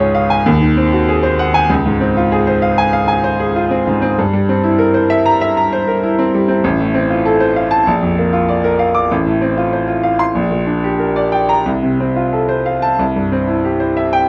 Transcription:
Already playing: C#2 G#2 C#4 F4 G#4
0.00 C#5
0.15 F5
0.30 G#5
0.46 D#2
0.61 D#3
0.77 C4
0.92 F#4
1.08 G#4
1.23 C5
1.39 F#5
1.54 G#5
1.70 C#2
1.86 G#2
2.01 C4
2.17 F4
2.32 G#4
2.47 C5
2.62 F5
2.78 G#5
2.93 F5
3.08 G#5
3.24 C5
3.40 G#4
3.56 F4
3.71 C4
3.87 G#2
4.02 C4
4.19 G2
4.33 G3
4.49 C4
4.64 E4
4.79 A#4
4.94 C5
5.10 E5
5.26 A#5
5.41 E5
5.57 A#5
5.73 C5
5.87 A#4
6.03 E4
6.19 C4
6.35 G3
6.48 C4
6.64 A1
6.80 A2
6.94 C4
7.10 F4
7.25 A4
7.40 C5
7.56 F5
7.71 A5
7.86 A#1
8.02 F2
8.18 A#3
8.33 F4
8.48 D5
8.64 A#4
8.79 F5
8.94 D6
9.11 A1
9.26 A2
9.41 C4
9.57 F4
9.73 C5
9.88 F4
10.03 F5
10.19 C6
10.35 A#1
10.51 A#2
10.67 D4
10.84 G4
10.99 A#4
11.16 D5
11.32 G5
11.49 A#5
11.66 C2
11.83 C3
12.00 C4
12.16 F4
12.33 A4
12.49 C5
12.66 F5
12.82 A5
12.99 C2
13.16 G2
13.32 C4
13.48 E4
13.64 G4
13.80 C5
13.97 E5
14.13 G5

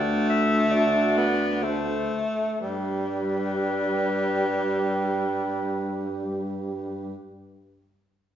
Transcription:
Already playing: D2 A3 F#4 D5
0.30 E5
0.71 F#4 D5
1.17 B3
1.62 A3 A4 C5
2.60 G2 G3 G4 B4

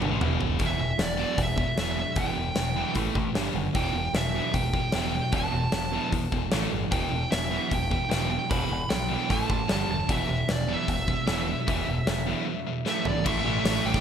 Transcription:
0.01 G1 G2 D3, high tom
0.09 A1 A2 E3
0.19 E1 E2 B2 E3, mid tom
0.41 floor tom
0.59 E1 E2 B2 E3, kick, open hi-hat
0.66 E5
0.79 E1 E2 B2
0.99 E1 E2 B2 D5, snare, open hi-hat
1.17 E2 B2 E3
1.38 E1 E2 B2, kick, open hi-hat
1.43 E5
1.58 E2 B2, kick
1.77 E1 E2 B2 E3 E5, snare, open hi-hat
1.97 E2 B2 E5
2.16 E1 E2 B2 E3 G5, kick, open hi-hat
2.37 E1 E2 B2
2.56 E1 E2 B2, snare, open hi-hat
2.76 E2 B2 E3
2.95 A1 A2 E3 A3, kick, open hi-hat
3.15 A1 A2 E3, kick
3.35 G1 G2 D3 G3, snare, open hi-hat
3.55 F#1 G2 D3
3.75 E1 E2 B2 E3 G5, kick, open hi-hat
3.94 E1 E2 B2
4.14 E1 E2 B2 E5, snare, open hi-hat
4.35 E2 B2 E3
4.54 E1 E2 B2 G5, kick, open hi-hat
4.73 E2 B2, kick
4.92 E1 E2 B2 E3 G5, snare, open hi-hat
5.13 E2 B2 G5
5.32 E1 E2 B2 E3 A5, kick, open hi-hat
5.53 E1 E2 B2
5.72 E1 E2 B2, snare, open hi-hat
5.93 E2 B2 E3
6.12 E2 B2, kick, open hi-hat
6.32 E1 E2 B2, kick
6.51 A1 A2 E3 A3, snare, open hi-hat
6.71 G1 A2 E3
6.91 E1 E2 B2 E3 G5, kick, open hi-hat
7.11 E1 E2 B2
7.30 E1 E2 B2 E5, snare, open hi-hat
7.51 E2 B2 E3
7.71 E1 E2 B2 G5, kick, open hi-hat
7.91 E2 B2, kick
8.10 E1 E2 B2 E3 G5, snare, open hi-hat
8.31 E2 B2 G5
8.50 E1 E2 B2 E3 B5, kick, open hi-hat
8.70 E1 E2 B2
8.89 B1 E2 B2 G5, snare, open hi-hat
9.08 E2 B2 E3
9.28 A1 A2 E3 A3 A5, kick, open hi-hat
9.47 A1 A2 E3, kick
9.68 G1 G2 D3 G3 A5, snare, open hi-hat
9.88 E1 G2 D3 A5
10.08 E1 E2 B2 E3 E5, kick, open hi-hat
10.29 E1 E2 B2
10.49 E1 E2 B2 D5, snare, open hi-hat
10.68 E2 B2 E3
10.73 E5
10.88 E1 E2 B2, kick, open hi-hat
11.08 E2 B2, kick
11.27 E1 E2 B2 E3, snare, open hi-hat
11.48 E2 B2
11.67 E1 E2 B2 E3, kick, open hi-hat
11.87 E1 E2 B2
12.07 E1 E2 B2, snare, open hi-hat
12.27 E2 B2 E3
12.46 E2 B2
12.67 E2 B2
12.85 A2 E3 A3 E5, snare
13.05 A2 E3 D5, floor tom
13.24 A1 A2 E3 A3 E5, kick, crash
13.44 A1 E5
13.65 A1, snare, open hi-hat
13.85 A1 G5
13.94 kick, snare

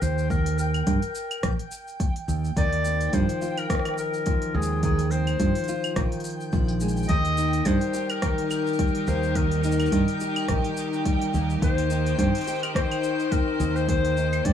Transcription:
Already playing: G5
0.02 D#2 C5, shaker
0.18 shaker
0.30 A#4, kick, shaker
0.46 open hi-hat, shaker
0.59 A#4, shaker
0.74 open hi-hat, claves, shaker
0.87 G2, kick, open hi-hat, shaker
1.02 open hi-hat, shaker
1.15 shaker
1.31 open hi-hat, claves, shaker
1.43 A#1, kick, cross-stick, open hi-hat, shaker
1.59 open hi-hat
1.71 shaker
1.88 shaker
2.00 kick, open hi-hat, shaker
2.16 open hi-hat
2.28 D#2, shaker
2.45 shaker
2.56 D#2 D#3 D5, kick, open hi-hat, shaker
2.73 open hi-hat, shaker
2.85 C4, shaker
3.01 open hi-hat, shaker
3.13 G2 F3 C5, kick, open hi-hat, shaker
3.29 open hi-hat, shaker
3.42 F4, shaker
3.58 A#4, open hi-hat, claves, shaker
3.70 D#3, kick, cross-stick, open hi-hat, shaker
3.75 cross-stick
3.79 cross-stick
3.85 cross-stick, open hi-hat, claves
3.89 cross-stick
3.94 cross-stick
3.98 A#4, shaker
4.14 shaker
4.26 F3, kick, open hi-hat, shaker
4.42 open hi-hat
4.54 D#2 G#3 G#4
4.62 shaker
4.83 D#3 G#4, kick, open hi-hat, shaker
4.99 open hi-hat, shaker
5.11 C4 C5, shaker
5.27 open hi-hat, claves, shaker
5.40 G2 F3, kick, open hi-hat, shaker
5.55 open hi-hat, shaker
5.58 open hi-hat
5.64 open hi-hat
5.68 F4, shaker
5.84 open hi-hat, claves, shaker
5.96 A#1 D#3, kick, cross-stick, open hi-hat, shaker
6.12 open hi-hat
6.20 open hi-hat
6.24 shaker
6.30 open hi-hat
6.40 shaker
6.53 A#1 F3, kick, shaker
6.68 open hi-hat
6.80 G#3, shaker
6.89 shaker
6.97 shaker
7.03 shaker
7.09 D#2 D#3 D#4 G4 A#4 D#5, kick, open hi-hat, shaker
7.25 open hi-hat, shaker
7.37 D#4, shaker
7.53 open hi-hat, shaker
7.65 G2 G3 C5, kick, open hi-hat, shaker
7.81 open hi-hat, shaker
7.94 G4, shaker
8.10 A#4, open hi-hat, claves, shaker
8.22 D#3, kick, cross-stick, open hi-hat, shaker
8.38 open hi-hat
8.51 A#4, claves, shaker
8.67 shaker
8.73 shaker
8.79 G3, kick, open hi-hat, shaker
8.87 shaker
8.95 open hi-hat
9.07 D#2 A#3 C5, shaker
9.23 shaker
9.35 D#3 A#4, kick, open hi-hat, shaker
9.52 open hi-hat, shaker
9.64 D#4 A#4, shaker
9.72 shaker
9.80 open hi-hat, claves, shaker
9.86 shaker
9.92 G2 G3, kick, open hi-hat, shaker
10.08 open hi-hat, shaker
10.20 G4, shaker
10.36 open hi-hat, claves, shaker
10.48 A#1 D#3, kick, cross-stick, open hi-hat, shaker
10.64 open hi-hat
10.77 shaker
10.93 shaker
11.06 G3, kick, open hi-hat, shaker
11.22 open hi-hat
11.34 D#2 A#3, shaker
11.50 shaker
11.62 D#2 D#3 C5, kick, open hi-hat, shaker
11.78 open hi-hat, shaker
11.90 D#4, shaker
12.06 open hi-hat, shaker
12.19 G2 C4 C5, kick, open hi-hat, shaker
12.35 open hi-hat, shaker
12.38 open hi-hat
12.41 open hi-hat
12.44 G4, open hi-hat
12.47 open hi-hat, shaker
12.51 open hi-hat
12.55 open hi-hat
12.59 A#4, open hi-hat
12.63 open hi-hat, claves, shaker
12.75 D#3 C5, kick, cross-stick, open hi-hat, shaker
12.91 open hi-hat, claves
13.04 shaker
13.20 shaker
13.32 C4 A#4, kick, open hi-hat, shaker
13.60 D#2 C4, shaker
13.76 C5, shaker
13.88 D#3 C5, kick, open hi-hat, shaker
14.05 open hi-hat, shaker
14.17 D#4, shaker
14.33 open hi-hat, claves, shaker
14.45 G2 C4 D5, kick, open hi-hat, shaker

